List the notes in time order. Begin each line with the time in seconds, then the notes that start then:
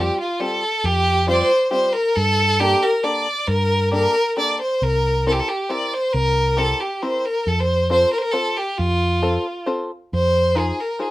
Already playing: G3 C4 F4 G4
0.00 G4
0.20 F4
0.40 G3 C4 F4 G4 A4
0.84 F2 G4
1.27 G3 C4 F4 G4 C5
1.33 D5
1.42 C5
1.71 G3 C4 F4 G4 C5
1.93 A#4
2.15 G2 A4
2.59 A#3 D4 G4 A4
2.82 A#4
3.03 A#3 D4 G4 A4 D5
3.48 G2 A#4
3.91 A#3 D4 G4 A4 A#4
4.37 A#3 D4 G4 A4 D5
4.61 C5
4.82 C2 A#4
5.26 C4 E4 G4 A4 A#4
5.32 G4
5.39 A4
5.48 G4
5.69 C4 E4 G4 A#4 D5
5.94 C5
6.12 C2 A#4
6.57 C4 E4 G4 A4 A#4
6.80 G4
7.02 C4 E4 G4 A#4 C5
7.25 A#4
7.47 F2 A4
7.60 C5
7.90 C4 F4 A4 C5
8.13 A#4
8.18 C5
8.22 A#4
8.31 C4 F4 A4 C5
8.57 G4
8.77 F2 F4
9.22 C4 F4 A4 C5
9.66 C4 F4 A4 C5
10.13 F2 C5
10.55 D#4 F4 G#4 C5
10.80 A#4
10.99 D#4 F4 G#4 C5